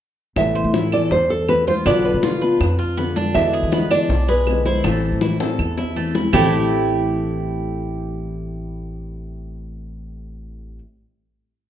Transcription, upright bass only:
0, 0, Header, 1, 2, 480
1, 0, Start_track
1, 0, Key_signature, 0, "minor"
1, 0, Tempo, 373599
1, 470, Time_signature, 4, 2, 24, 8
1, 15023, End_track
2, 0, Start_track
2, 0, Title_t, "Upright bass"
2, 0, Program_c, 0, 32
2, 465, Note_on_c, 0, 33, 98
2, 809, Note_off_c, 0, 33, 0
2, 824, Note_on_c, 0, 45, 85
2, 1397, Note_off_c, 0, 45, 0
2, 1425, Note_on_c, 0, 40, 88
2, 2339, Note_off_c, 0, 40, 0
2, 2384, Note_on_c, 0, 35, 105
2, 2728, Note_off_c, 0, 35, 0
2, 2746, Note_on_c, 0, 47, 82
2, 3316, Note_off_c, 0, 47, 0
2, 3344, Note_on_c, 0, 41, 93
2, 4256, Note_off_c, 0, 41, 0
2, 4305, Note_on_c, 0, 40, 106
2, 4646, Note_off_c, 0, 40, 0
2, 4663, Note_on_c, 0, 52, 78
2, 5232, Note_off_c, 0, 52, 0
2, 5256, Note_on_c, 0, 35, 96
2, 6169, Note_off_c, 0, 35, 0
2, 6221, Note_on_c, 0, 33, 106
2, 6562, Note_off_c, 0, 33, 0
2, 6578, Note_on_c, 0, 45, 79
2, 7148, Note_off_c, 0, 45, 0
2, 7181, Note_on_c, 0, 40, 96
2, 8091, Note_off_c, 0, 40, 0
2, 8137, Note_on_c, 0, 33, 104
2, 13856, Note_off_c, 0, 33, 0
2, 15023, End_track
0, 0, End_of_file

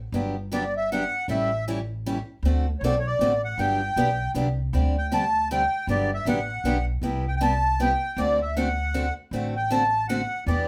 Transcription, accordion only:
0, 0, Header, 1, 2, 480
1, 0, Start_track
1, 0, Tempo, 383142
1, 162, Time_signature, 3, 2, 24, 8
1, 13379, End_track
2, 0, Start_track
2, 0, Title_t, "Accordion"
2, 0, Program_c, 0, 21
2, 666, Note_on_c, 0, 74, 80
2, 930, Note_off_c, 0, 74, 0
2, 962, Note_on_c, 0, 76, 81
2, 1125, Note_off_c, 0, 76, 0
2, 1150, Note_on_c, 0, 78, 95
2, 1587, Note_off_c, 0, 78, 0
2, 1633, Note_on_c, 0, 76, 80
2, 2069, Note_off_c, 0, 76, 0
2, 3500, Note_on_c, 0, 73, 49
2, 3540, Note_off_c, 0, 73, 0
2, 3558, Note_on_c, 0, 74, 75
2, 3737, Note_off_c, 0, 74, 0
2, 3744, Note_on_c, 0, 73, 64
2, 3839, Note_off_c, 0, 73, 0
2, 3842, Note_on_c, 0, 74, 81
2, 4281, Note_off_c, 0, 74, 0
2, 4313, Note_on_c, 0, 78, 85
2, 4496, Note_on_c, 0, 79, 93
2, 4502, Note_off_c, 0, 78, 0
2, 5405, Note_off_c, 0, 79, 0
2, 6241, Note_on_c, 0, 79, 86
2, 6408, Note_off_c, 0, 79, 0
2, 6434, Note_on_c, 0, 81, 96
2, 6871, Note_off_c, 0, 81, 0
2, 6909, Note_on_c, 0, 79, 92
2, 7348, Note_off_c, 0, 79, 0
2, 7395, Note_on_c, 0, 74, 87
2, 7657, Note_off_c, 0, 74, 0
2, 7691, Note_on_c, 0, 76, 83
2, 7853, Note_off_c, 0, 76, 0
2, 7874, Note_on_c, 0, 78, 79
2, 8585, Note_off_c, 0, 78, 0
2, 9121, Note_on_c, 0, 79, 83
2, 9206, Note_off_c, 0, 79, 0
2, 9225, Note_on_c, 0, 79, 67
2, 9291, Note_off_c, 0, 79, 0
2, 9295, Note_on_c, 0, 81, 95
2, 9782, Note_on_c, 0, 79, 88
2, 9786, Note_off_c, 0, 81, 0
2, 10255, Note_on_c, 0, 74, 87
2, 10268, Note_off_c, 0, 79, 0
2, 10524, Note_off_c, 0, 74, 0
2, 10549, Note_on_c, 0, 76, 72
2, 10718, Note_off_c, 0, 76, 0
2, 10732, Note_on_c, 0, 78, 79
2, 11450, Note_off_c, 0, 78, 0
2, 11982, Note_on_c, 0, 79, 79
2, 12153, Note_off_c, 0, 79, 0
2, 12169, Note_on_c, 0, 81, 99
2, 12611, Note_off_c, 0, 81, 0
2, 12630, Note_on_c, 0, 78, 83
2, 13081, Note_off_c, 0, 78, 0
2, 13121, Note_on_c, 0, 74, 87
2, 13379, Note_off_c, 0, 74, 0
2, 13379, End_track
0, 0, End_of_file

